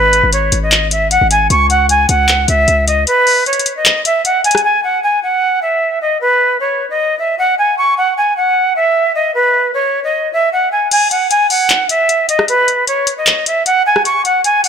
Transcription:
Already playing: 808-style bass G#1, flute B4
0.13 closed hi-hat
0.23 808-style bass G#1
0.33 flute C#5, closed hi-hat
0.52 808-style bass G#1, closed hi-hat
0.63 flute D#5
0.72 clap, closed hi-hat
0.91 flute E5, closed hi-hat
1.11 flute F#5, closed hi-hat
1.21 808-style bass G#1
1.31 flute G#5, closed hi-hat
1.50 808-style bass C#2, flute C#6, closed hi-hat
1.70 flute F#5, closed hi-hat
1.89 flute G#5, closed hi-hat
2.09 808-style bass C#2, flute F#5, closed hi-hat
2.28 clap, closed hi-hat
2.48 808-style bass C#2, flute E5, closed hi-hat
2.68 808-style bass C#2, closed hi-hat
2.87 flute D#5, closed hi-hat
3.07 flute B4, closed hi-hat
3.27 open hi-hat
3.46 flute C#5, closed hi-hat
3.53 closed hi-hat
3.59 closed hi-hat
3.66 closed hi-hat
3.76 flute D#5
3.85 clap, closed hi-hat
4.05 flute E5, closed hi-hat
4.25 flute F#5, closed hi-hat
4.44 flute G#5, closed hi-hat
4.51 cross-stick, closed hi-hat
4.58 closed hi-hat
4.64 flute G#5
4.83 flute F#5
5.03 flute G#5
5.23 flute F#5
5.62 flute E5
6.01 flute D#5
6.21 flute B4
6.60 flute C#5
6.90 flute D#5
7.19 flute E5
7.38 flute F#5
7.58 flute G#5
7.78 flute C#6
7.97 flute F#5
8.17 flute G#5
8.36 flute F#5
8.76 flute E5
9.15 flute D#5
9.34 flute B4
9.74 flute C#5
10.04 flute D#5
10.33 flute E5
10.52 flute F#5
10.72 flute G#5
10.91 flute G#5, closed hi-hat, crash
11.11 flute F#5, closed hi-hat
11.30 flute G#5, closed hi-hat
11.50 flute F#5, open hi-hat
11.70 clap, closed hi-hat
11.89 flute E5, closed hi-hat
12.09 closed hi-hat
12.29 flute D#5, closed hi-hat
12.39 cross-stick
12.48 flute B4, closed hi-hat
12.68 closed hi-hat
12.87 flute C#5, closed hi-hat
13.07 closed hi-hat
13.17 flute D#5
13.27 clap, closed hi-hat
13.46 flute E5, closed hi-hat
13.66 flute F#5, closed hi-hat
13.86 flute G#5
13.96 cross-stick
14.05 flute C#6, closed hi-hat
14.25 flute F#5, closed hi-hat
14.44 flute G#5, closed hi-hat
14.64 flute F#5, open hi-hat

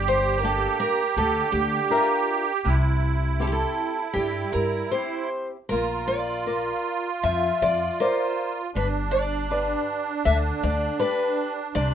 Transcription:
Already playing: upright bass G1, nylon-string guitar G3, accordion G4
0.08 twelve-string acoustic guitar C5
0.38 twelve-string acoustic guitar A#4
0.43 nylon-string guitar A#3 D4 G4, twelve-string acoustic guitar A4
0.80 twelve-string acoustic guitar A#4
1.17 upright bass D2, nylon-string guitar D3, twelve-string acoustic guitar A4
1.52 upright bass D2, twelve-string acoustic guitar G4
1.90 nylon-string guitar D4 G4 A#4, twelve-string acoustic guitar F4
2.65 upright bass C2, nylon-string guitar C3, accordion E4
3.40 nylon-string guitar C4 E4 G4, twelve-string acoustic guitar A4
3.47 twelve-string acoustic guitar G4
3.52 twelve-string acoustic guitar A4
4.14 upright bass G2, nylon-string guitar G3, twelve-string acoustic guitar G4
4.53 upright bass G2, twelve-string acoustic guitar A#4
4.91 nylon-string guitar C4 E4 G4, twelve-string acoustic guitar C5
5.69 upright bass A#1, nylon-string guitar A#3, accordion F4, twelve-string acoustic guitar A#4
6.08 twelve-string acoustic guitar D5
6.47 nylon-string guitar A#4 C5 D5
7.23 upright bass F2, nylon-string guitar F3, twelve-string acoustic guitar E5
7.62 upright bass F2, twelve-string acoustic guitar D5
8.00 nylon-string guitar A#4 C5 D5, twelve-string acoustic guitar C5
8.74 upright bass G1, nylon-string guitar G3, accordion D4, twelve-string acoustic guitar B4
9.11 twelve-string acoustic guitar D5
9.51 nylon-string guitar G4 B4 D5
10.25 upright bass D2, nylon-string guitar D3, twelve-string acoustic guitar E5
10.63 upright bass D2, twelve-string acoustic guitar D5
11.00 nylon-string guitar G4 B4 D5, twelve-string acoustic guitar B4
11.75 upright bass C2, nylon-string guitar C3, accordion D4, twelve-string acoustic guitar D5

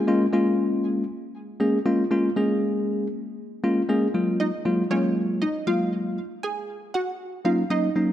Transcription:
0.08 tine electric piano G#3 A#3 C#4 F4
0.33 tine electric piano G#3 A#3 C#4 F4
1.60 tine electric piano G#3 A#3 C#4 G#4
1.86 tine electric piano G#3 A#3 C#4 F4
2.11 tine electric piano G#3 A#3 C#4 F4
2.36 tine electric piano G#3 A#3 C#4 G#4
3.63 tine electric piano G#3 A#3 C#4 F4
3.89 tine electric piano G#3 A#3 C#4 G#4
4.14 tine electric piano F#3 G#3 A#3 F4
4.40 synth pluck D#4 D#5
4.65 tine electric piano F#3 G#3 A#3 F4
4.91 tine electric piano F#3 G#3 A#3 F4, synth pluck C#4 C#5
5.42 synth pluck D#4 D#5
5.67 tine electric piano F#3 G#3 A#3 F4, synth pluck F4 F5
6.43 synth pluck G#4 G#5
6.94 synth pluck F#4 F#5
7.45 tine electric piano F#3 A#3 C#4 D#4, synth pluck F4 F5
7.70 tine electric piano F#3 A#3 C#4 D#4, synth pluck D#4 D#5
7.96 tine electric piano F#3 A#3 C#4 D#4

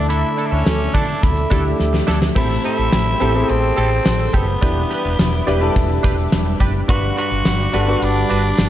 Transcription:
Already playing: fretless electric bass D2, grand piano D3 A3 D4 E4 A4, analog synth pad A4 E5 D6 E6
0.09 clean electric guitar D4 E4 A4, tenor saxophone E4, closed hi-hat
0.37 clean electric guitar D4 E4 A4, closed hi-hat
0.46 tenor saxophone D4
0.51 fretless electric bass D2, tenor saxophone C#4, clean electric guitar D4 E4 A4
0.66 fretless electric bass D2, muted clean electric guitar stroke, snare, closed hi-hat
0.79 muted clean electric guitar stroke
0.94 fretless electric bass D3, clean electric guitar D4 E4 A4, tenor saxophone D4, kick, closed hi-hat
1.08 clean electric guitar D4 E4 A4
1.23 fretless electric bass D2, tenor saxophone E4, kick, closed hi-hat
1.36 muted clean electric guitar stroke, closed hi-hat
1.50 fretless electric bass D2, grand piano A3 D4 E4 G4, clean electric guitar D4 E4 A4, kick, closed hi-hat
1.65 muted clean electric guitar stroke
1.79 fretless electric bass D2, muted clean electric guitar stroke, snare
1.93 muted clean electric guitar stroke, snare
2.07 fretless electric bass D2, clean electric guitar D4 E4 A4, snare
2.21 muted clean electric guitar stroke, snare
2.35 fretless electric bass A1, grand piano A2 C4 E4 G4 A4, clean electric guitar C4 G4 A4, tenor saxophone E4, analog synth pad A4 G5 C6 E6, kick, crash
2.64 clean electric guitar C4 G4 A4, tenor saxophone E4, closed hi-hat
2.77 fretless electric bass A1, clean electric guitar C4 G4 A4
2.92 fretless electric bass A1, muted clean electric guitar stroke, snare, closed hi-hat, tambourine
3.06 muted clean electric guitar stroke
3.20 fretless electric bass A1, clean electric guitar C4 G4 A4, grand piano C4 E4 G4 A4, closed hi-hat
3.34 grand piano C4 E4 G4 G#4, clean electric guitar C4 G4 A4
3.42 grand piano A4
3.49 fretless electric bass A1, tenor saxophone C4, closed hi-hat
3.62 muted clean electric guitar stroke
3.77 fretless electric bass A1, clean electric guitar C4 G4 A4, closed hi-hat
3.91 muted clean electric guitar stroke
4.05 fretless electric bass A1, muted clean electric guitar stroke, snare, closed hi-hat, tambourine
4.19 muted clean electric guitar stroke
4.33 fretless electric bass F#1, tenor saxophone B3, clean electric guitar C4 G4 A4, kick, closed hi-hat
4.48 muted clean electric guitar stroke
4.61 fretless electric bass E1, grand piano E3 D4 E4 G4 B4, analog synth pad G3 E5 B5 D6, clean electric guitar D4 G4 B4, kick, closed hi-hat
4.90 clean electric guitar D4 G4 B4, closed hi-hat
5.04 fretless electric bass E1, clean electric guitar D4 G4 B4
5.19 fretless electric bass E1, snare, closed hi-hat, tambourine
5.33 muted clean electric guitar stroke
5.46 fretless electric bass E1, grand piano D4 E4 G4 B4, clean electric guitar D4 G4 B4, closed hi-hat
5.61 grand piano D4 E4 G4 A4, clean electric guitar D4 G4 B4
5.76 fretless electric bass E1, kick, closed hi-hat
5.89 muted clean electric guitar stroke
6.03 fretless electric bass E1, clean electric guitar D4 G4 B4, kick, closed hi-hat
6.18 muted clean electric guitar stroke
6.32 fretless electric bass E1, muted clean electric guitar stroke, snare, closed hi-hat, tambourine
6.46 muted clean electric guitar stroke
6.60 fretless electric bass F#1, clean electric guitar D4 G4 B4, kick, closed hi-hat
6.74 muted clean electric guitar stroke
6.88 fretless electric bass G1, grand piano G2 D4 F#4 G4 B4, clean electric guitar D4 F#4 B4, tenor saxophone F#4, analog synth pad F#5 D6, kick, closed hi-hat
7.17 clean electric guitar D4 F#4 B4, tenor saxophone F#4, closed hi-hat
7.31 fretless electric bass G1, clean electric guitar D4 F#4 B4
7.45 fretless electric bass G1, muted clean electric guitar stroke, snare, closed hi-hat, tambourine
7.60 muted clean electric guitar stroke
7.73 fretless electric bass G1, grand piano D4 F#4 G4 A4, clean electric guitar D4 F#4 B4, closed hi-hat
7.87 grand piano D4 F#4 G4 B4, clean electric guitar D4 F#4 B4
8.02 fretless electric bass G1, tenor saxophone D4, closed hi-hat
8.16 muted clean electric guitar stroke
8.30 fretless electric bass G1, clean electric guitar D4 F#4 B4, closed hi-hat
8.44 muted clean electric guitar stroke
8.58 fretless electric bass G1, muted clean electric guitar stroke, snare, closed hi-hat, tambourine

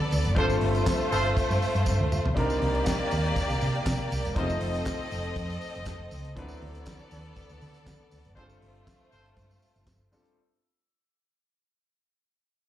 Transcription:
Already playing: grand piano F#3 C4 D4 E4 B4, violin section B3 A4 D5
0.11 fingered electric bass D2, open hi-hat, tambourine
0.25 fingered electric bass F#1, closed hi-hat, tambourine
0.35 fingered electric bass G1, grand piano G3 C4 D4 F4 A4, violin section A3 F4 C5, horn section F4 A4 C5, kick, closed hi-hat
0.50 tambourine
0.61 fingered electric bass G1, open hi-hat
0.75 closed hi-hat, tambourine
0.87 kick, snare, clap, closed hi-hat, tambourine
1.01 tambourine
1.11 fingered electric bass G1, horn section F4 A4 C5, open hi-hat, tambourine
1.26 closed hi-hat
1.37 kick, closed hi-hat, tambourine
1.50 fingered electric bass G2, tambourine
1.62 open hi-hat, tambourine
1.75 fingered electric bass G2, closed hi-hat, tambourine
1.86 fingered electric bass G2, kick, snare, tambourine
2.00 fingered electric bass D2, high tom
2.12 mid tom, tambourine
2.26 fingered electric bass B1, floor tom
2.35 fingered electric bass C2, grand piano G3 C4 D4 D#4 A#4, violin section A#3 G4 D5, kick, closed hi-hat
2.50 tambourine
2.62 fingered electric bass C2, open hi-hat
2.75 closed hi-hat
2.86 kick, snare, clap, closed hi-hat, tambourine
3.11 fingered electric bass D#2, open hi-hat, tambourine
3.25 closed hi-hat
3.36 kick, closed hi-hat, tambourine
3.50 fingered electric bass C2, tambourine
3.61 fingered electric bass C3, open hi-hat, tambourine
3.75 closed hi-hat
3.86 fingered electric bass C3, kick, snare, clap, closed hi-hat, tambourine
4.11 fingered electric bass C2, open hi-hat, tambourine
4.25 fingered electric bass E1, closed hi-hat, tambourine
4.35 fingered electric bass F1, grand piano G3 C4 D#4 F4 C5, violin section C4 A4 D#5, kick, closed hi-hat
4.41 grand piano A3
4.50 tambourine
4.61 fingered electric bass F1, open hi-hat
4.74 closed hi-hat, tambourine
4.86 kick, snare, clap, closed hi-hat, tambourine
5.00 tambourine
5.11 fingered electric bass F1, open hi-hat, tambourine
5.24 closed hi-hat
5.36 fingered electric bass F2, kick, closed hi-hat, tambourine
5.50 tambourine
5.61 open hi-hat, tambourine
5.75 fingered electric bass F1, closed hi-hat, tambourine
5.85 fingered electric bass F1, kick, snare, clap, closed hi-hat, tambourine
6.11 fingered electric bass C#2, open hi-hat, tambourine
6.24 closed hi-hat, tambourine
6.35 fingered electric bass D2, grand piano E3 C4 D4 E4 B4, violin section B3 A4 D5, kick, closed hi-hat
6.41 grand piano F#3
6.48 tambourine
6.62 fingered electric bass D2, open hi-hat
6.75 closed hi-hat, tambourine
6.86 kick, snare, clap, closed hi-hat, tambourine
6.99 tambourine
7.11 fingered electric bass D#2, open hi-hat, tambourine
7.25 closed hi-hat
7.36 kick, closed hi-hat, tambourine
7.49 fingered electric bass D2, tambourine
7.61 fingered electric bass D3, open hi-hat, tambourine
7.74 closed hi-hat, tambourine
7.86 fingered electric bass D3, kick, snare, clap, closed hi-hat, tambourine
8.11 fingered electric bass D2, open hi-hat, tambourine
8.25 fingered electric bass F#1, closed hi-hat, tambourine
8.35 grand piano G3 C4 D4 F4 G#4, violin section A3 F4 C5, horn section F4 A4 C5, kick, closed hi-hat
8.45 grand piano A4
8.50 tambourine
8.62 fingered electric bass G1, open hi-hat
8.75 closed hi-hat
8.87 kick, snare, clap, closed hi-hat, tambourine
9.11 fingered electric bass G1, horn section F4 A4 C5, open hi-hat, tambourine
9.26 closed hi-hat
9.37 fingered electric bass G2, kick, closed hi-hat, tambourine
9.51 tambourine
9.62 open hi-hat, tambourine
9.76 fingered electric bass G1, closed hi-hat, tambourine
9.87 fingered electric bass G1, kick, snare, clap, closed hi-hat, tambourine
10.12 grand piano G3 C4 D4 F4 A4, open hi-hat, tambourine
10.25 closed hi-hat, tambourine

